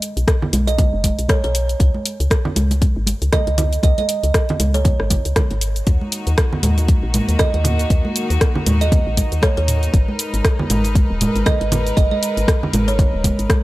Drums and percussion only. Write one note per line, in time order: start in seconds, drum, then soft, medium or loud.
0.02 open hi-hat medium
0.02 cabasa medium
0.17 closed hi-hat soft
0.17 cabasa medium
0.28 kick loud
0.28 cross-stick loud
0.28 closed hi-hat medium
0.28 muted conga soft
0.28 cabasa soft
0.42 low conga medium
0.53 open hi-hat medium
0.53 high conga medium
0.53 cabasa medium
0.67 closed hi-hat soft
0.67 muted conga medium
0.67 cabasa medium
0.78 kick loud
0.78 closed hi-hat medium
0.78 high conga medium
0.78 low conga medium
0.78 cabasa soft
1.04 kick medium
1.04 open hi-hat medium
1.04 muted conga soft
1.04 high conga medium
1.04 cabasa medium
1.19 closed hi-hat soft
1.19 cabasa soft
1.28 kick loud
1.28 cross-stick loud
1.28 closed hi-hat medium
1.28 high conga medium
1.28 cabasa soft
1.44 closed hi-hat soft
1.44 muted conga soft
1.55 open hi-hat medium
1.55 cabasa medium
1.69 closed hi-hat soft
1.69 cabasa medium
1.80 kick loud
1.80 closed hi-hat medium
1.80 muted conga medium
1.80 cabasa soft
1.94 high conga medium
2.06 open hi-hat medium
2.06 cabasa medium
2.20 closed hi-hat soft
2.20 cabasa soft
2.30 kick loud
2.30 cross-stick loud
2.30 closed hi-hat medium
2.30 muted conga soft
2.30 cabasa soft
2.45 low conga loud
2.56 open hi-hat medium
2.56 high conga medium
2.56 cabasa medium
2.71 closed hi-hat soft
2.71 muted conga medium
2.71 cabasa soft
2.81 kick loud
2.81 closed hi-hat medium
2.81 high conga medium
2.81 cabasa soft
3.07 open hi-hat medium
3.07 muted conga soft
3.07 high conga medium
3.07 cabasa medium
3.22 closed hi-hat soft
3.22 cabasa soft
3.33 kick loud
3.33 cross-stick loud
3.33 closed hi-hat medium
3.33 high conga medium
3.33 low conga medium
3.33 cabasa soft
3.47 closed hi-hat soft
3.47 muted conga medium
3.58 open hi-hat medium
3.58 low conga loud
3.58 cabasa medium
3.73 closed hi-hat soft
3.73 cabasa medium
3.83 kick loud
3.83 closed hi-hat medium
3.83 muted conga medium
3.83 cabasa soft
3.98 closed hi-hat soft
3.98 high conga medium
4.09 open hi-hat medium
4.09 cabasa medium
4.23 closed hi-hat soft
4.23 cabasa soft
4.34 kick loud
4.34 cross-stick loud
4.34 closed hi-hat medium
4.34 muted conga soft
4.34 cabasa soft
4.49 closed hi-hat soft
4.49 low conga loud
4.60 open hi-hat medium
4.60 high conga medium
4.60 cabasa medium
4.74 closed hi-hat soft
4.74 muted conga medium
4.74 cabasa medium
4.85 kick loud
4.85 closed hi-hat medium
4.85 high conga medium
4.85 low conga medium
4.85 cabasa soft
5.00 cross-stick medium
5.10 kick medium
5.10 open hi-hat medium
5.10 muted conga soft
5.10 high conga medium
5.10 low conga medium
5.10 cabasa medium
5.25 closed hi-hat soft
5.25 cabasa soft
5.36 kick loud
5.36 cross-stick loud
5.36 closed hi-hat medium
5.36 high conga medium
5.36 low conga medium
5.36 cabasa soft
5.51 closed hi-hat soft
5.51 muted conga medium
5.61 open hi-hat medium
5.61 cabasa medium
5.76 closed hi-hat soft
5.76 cabasa medium
5.87 kick loud
5.87 closed hi-hat medium
5.87 muted conga soft
5.87 cabasa soft
6.01 high conga medium
6.12 open hi-hat medium
6.12 cabasa medium
6.27 closed hi-hat soft
6.27 cabasa medium
6.38 kick loud
6.38 cross-stick loud
6.38 closed hi-hat medium
6.38 muted conga soft
6.38 cabasa soft
6.53 low conga loud
6.63 mid tom medium
6.63 open hi-hat medium
6.63 high conga loud
6.63 cabasa medium
6.78 closed hi-hat soft
6.78 muted conga medium
6.78 cabasa medium
6.88 kick loud
6.88 closed hi-hat medium
6.88 high conga medium
6.88 cabasa soft
7.14 mid tom medium
7.14 open hi-hat medium
7.14 muted conga soft
7.14 high conga medium
7.14 cabasa medium
7.29 closed hi-hat soft
7.29 cabasa medium
7.39 kick loud
7.39 cross-stick loud
7.39 closed hi-hat medium
7.39 high conga medium
7.39 low conga medium
7.39 cabasa soft
7.54 closed hi-hat soft
7.54 muted conga medium
7.64 mid tom medium
7.64 open hi-hat medium
7.64 low conga loud
7.64 cabasa medium
7.79 closed hi-hat soft
7.79 cabasa medium
7.90 kick loud
7.90 closed hi-hat medium
7.90 muted conga medium
7.90 cabasa soft
8.05 high conga medium
8.16 open hi-hat medium
8.16 cabasa medium
8.30 closed hi-hat soft
8.30 cabasa medium
8.41 kick loud
8.41 cross-stick loud
8.41 closed hi-hat medium
8.41 muted conga soft
8.41 cabasa soft
8.55 low conga loud
8.66 mid tom medium
8.66 open hi-hat medium
8.66 high conga loud
8.66 cabasa medium
8.81 closed hi-hat soft
8.81 muted conga soft
8.81 cabasa medium
8.92 kick loud
8.92 closed hi-hat medium
8.92 high conga medium
8.92 low conga loud
8.92 cabasa soft
9.17 kick medium
9.17 open hi-hat medium
9.17 muted conga soft
9.17 high conga medium
9.17 cabasa medium
9.32 closed hi-hat soft
9.32 cabasa medium
9.42 kick loud
9.42 cross-stick loud
9.42 closed hi-hat medium
9.42 high conga medium
9.42 cabasa soft
9.57 closed hi-hat soft
9.57 muted conga soft
9.68 mid tom medium
9.68 open hi-hat medium
9.68 cabasa medium
9.83 closed hi-hat soft
9.83 cabasa medium
9.94 kick loud
9.94 closed hi-hat medium
9.94 muted conga soft
9.94 cabasa soft
10.08 high conga medium
10.19 open hi-hat medium
10.19 cabasa medium
10.34 closed hi-hat soft
10.34 cabasa medium
10.45 kick loud
10.45 cross-stick loud
10.45 closed hi-hat medium
10.45 muted conga soft
10.45 cabasa soft
10.59 low conga loud
10.70 mid tom medium
10.70 open hi-hat medium
10.70 high conga loud
10.70 cabasa loud
10.84 closed hi-hat soft
10.84 muted conga medium
10.84 cabasa medium
10.95 kick loud
10.95 closed hi-hat medium
10.95 high conga medium
10.95 cabasa soft
11.21 mid tom medium
11.21 open hi-hat medium
11.21 muted conga soft
11.21 high conga loud
11.21 cabasa loud
11.36 closed hi-hat soft
11.36 cabasa medium
11.46 kick loud
11.46 cross-stick loud
11.46 closed hi-hat medium
11.46 high conga medium
11.46 low conga medium
11.46 cabasa soft
11.61 closed hi-hat soft
11.61 muted conga soft
11.72 mid tom medium
11.72 open hi-hat medium
11.72 low conga loud
11.72 cabasa medium
11.87 closed hi-hat soft
11.87 cabasa medium
11.97 kick loud
11.97 closed hi-hat medium
11.97 muted conga soft
11.97 cabasa soft
12.12 high conga medium
12.23 open hi-hat medium
12.23 cabasa medium
12.37 closed hi-hat soft
12.37 cabasa medium
12.47 kick loud
12.47 cross-stick loud
12.47 closed hi-hat medium
12.47 muted conga soft
12.47 cabasa soft
12.63 low conga medium
12.73 mid tom medium
12.73 open hi-hat medium
12.73 high conga loud
12.73 cabasa loud
12.88 closed hi-hat soft
12.88 muted conga medium
12.88 cabasa medium
12.99 kick loud
12.99 closed hi-hat medium
12.99 high conga medium
12.99 low conga medium
12.99 cabasa soft
13.24 kick medium
13.24 open hi-hat medium
13.24 muted conga soft
13.24 high conga medium
13.24 low conga medium
13.24 cabasa medium
13.39 closed hi-hat soft
13.39 cabasa medium
13.50 kick loud
13.50 cross-stick loud
13.50 closed hi-hat medium
13.50 high conga medium
13.50 cabasa soft